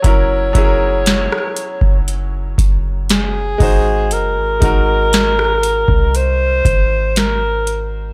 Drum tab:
HH |x-x-x-x-x-x-x-o-|x-x-x-x-x-x-x-x-|
SD |----or------o---|----or------o---|
BD |o-o----o--o---o-|--o----o--o-----|